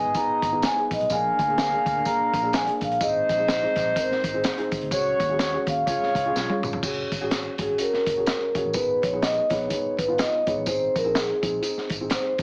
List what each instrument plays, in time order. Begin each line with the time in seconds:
Already playing: horn section B3 G#4 D#5, vibraphone G#5
0.05 fingered electric bass G#1
0.14 upright piano B3 D#4 G#4, kick, closed hi-hat, tambourine
0.30 muted fingered electric bass stroke
0.42 fingered electric bass G#1, kick, closed hi-hat, tambourine
0.52 upright piano B3 D#4 G#4
0.62 vibraphone G#5, snare, closed hi-hat, tambourine
0.76 upright piano B3 D#4 G#4
0.91 fingered electric bass A#1, vibraphone D#5, kick, closed hi-hat, tambourine
1.00 fingered electric bass B1, closed hi-hat
1.10 fingered electric bass A#1, upright piano A#3 D4 G#4, horn section D4 A#4 F5, vibraphone G#5, kick, closed hi-hat, tambourine
1.39 fingered electric bass D2, vibraphone G#5, kick, closed hi-hat, tambourine
1.48 upright piano A#3 D4 G#4
1.58 snare, closed hi-hat, tambourine
1.72 upright piano A#3 D4 G#4
1.86 fingered electric bass D2, kick, closed hi-hat, tambourine
2.05 upright piano A#3 D4 G#4, vibraphone A#5, kick, closed hi-hat, tambourine
2.21 muted fingered electric bass stroke
2.34 fingered electric bass A#1, kick, closed hi-hat, tambourine
2.42 upright piano A#3 D4 G#4
2.53 vibraphone G#5, snare, closed hi-hat, tambourine
2.65 upright piano A#3 D4 G#4, closed hi-hat
2.81 fingered electric bass A#1, vibraphone F5, kick, closed hi-hat, tambourine
2.92 closed hi-hat
3.00 fingered electric bass G#1, horn section G#3 D#4 C5, upright piano C4 D#4 G#4, vibraphone D#5, kick, closed hi-hat, tambourine
3.29 fingered electric bass A#1, vibraphone D#5, kick, closed hi-hat, tambourine
3.37 upright piano C4 D#4 G#4
3.48 snare, closed hi-hat, tambourine
3.62 upright piano C4 D#4 G#4
3.76 fingered electric bass A#1, kick, snare, closed hi-hat, tambourine
3.95 upright piano C4 D#4 A#4, vibraphone C5, kick, closed hi-hat, tambourine
4.11 muted fingered electric bass stroke, snare
4.24 fingered electric bass G#1, kick, closed hi-hat, tambourine
4.33 upright piano C4 D#4 G#4
4.44 snare, closed hi-hat, tambourine
4.58 upright piano C4 D#4 G#4, closed hi-hat
4.72 fingered electric bass G#1, kick, closed hi-hat, tambourine
4.81 fingered electric bass D2, closed hi-hat
4.91 fingered electric bass C#2, horn section G#3 F#4 C#5, upright piano C#4 F#4 G#4, vibraphone C#5, kick, closed hi-hat, tambourine
5.20 fingered electric bass D#2, kick, closed hi-hat, tambourine
5.29 upright piano C#4 F#4 G#4
5.39 snare, closed hi-hat, tambourine
5.53 upright piano C#4 F#4 G#4
5.67 fingered electric bass D#2, vibraphone F5, kick, closed hi-hat, tambourine
5.86 fingered electric bass C#2, horn section G#3 F4 C#5, upright piano C#4 F4 G#4, kick, closed hi-hat, tambourine
6.03 muted fingered electric bass stroke, snare
6.15 fingered electric bass C#2, kick, closed hi-hat, tambourine
6.25 upright piano C#4 F4 G#4
6.36 fingered electric bass B1, snare, tambourine
6.49 upright piano C#4 F4 G#4, high tom
6.63 fingered electric bass G1, mid tom, tambourine
6.73 floor tom
6.83 fingered electric bass F#1, upright piano C#4 F#4 G#4, kick, crash, tambourine
7.12 fingered electric bass G#1, kick, closed hi-hat, tambourine
7.21 upright piano C#4 F#4 G#4
7.31 snare, closed hi-hat, tambourine
7.58 fingered electric bass G#1, upright piano C#4 F#4 G#4, vibraphone G#4, kick, closed hi-hat, tambourine
7.78 upright piano C#4 F#4 G#4, vibraphone A#4, closed hi-hat, tambourine
7.93 muted fingered electric bass stroke, snare
8.06 fingered electric bass F#1, kick, closed hi-hat, tambourine
8.16 upright piano C#4 F#4 G#4
8.26 snare, closed hi-hat, tambourine
8.55 fingered electric bass F#1, upright piano C#4 F#4 G#4, kick, closed hi-hat, tambourine
8.65 fingered electric bass A1
8.73 fingered electric bass G#1, upright piano B3 D#4 G#4, vibraphone B4, kick, closed hi-hat, tambourine
9.02 fingered electric bass A#1, vibraphone C#5, kick, closed hi-hat, tambourine
9.12 upright piano B3 D#4 G#4
9.22 vibraphone D#5, snare, closed hi-hat, tambourine
9.50 fingered electric bass A#1, upright piano B3 D#4 G#4, vibraphone C#5, kick, snare, closed hi-hat, tambourine
9.69 upright piano B3 D#4 G#4, kick, closed hi-hat, tambourine
9.85 muted fingered electric bass stroke
9.97 fingered electric bass G#1, vibraphone B4, kick, closed hi-hat, tambourine
10.08 upright piano B3 D#4 F4
10.18 vibraphone D#5, snare, closed hi-hat, tambourine
10.46 fingered electric bass G#1, upright piano B3 D#4 G#4, vibraphone C#5, kick, closed hi-hat, tambourine
10.58 fingered electric bass A1
10.66 fingered electric bass G#1, upright piano C4 D#4 G#4, vibraphone C5, kick, closed hi-hat, tambourine
10.96 fingered electric bass A#1, vibraphone A#4, kick, closed hi-hat, tambourine
11.04 upright piano C4 D#4 G#4
11.15 vibraphone G#4, snare, closed hi-hat, tambourine
11.42 fingered electric bass A#1, upright piano C4 D#4 G#4, kick, closed hi-hat, tambourine
11.62 upright piano C4 D#4 G#4, closed hi-hat, tambourine
11.77 muted fingered electric bass stroke, snare
11.90 fingered electric bass G#1, kick, closed hi-hat, tambourine
12.01 upright piano C4 D#4 G#4
12.10 snare, closed hi-hat, tambourine
12.14 vibraphone C5
12.38 fingered electric bass G#1, upright piano C4 D#4, kick, closed hi-hat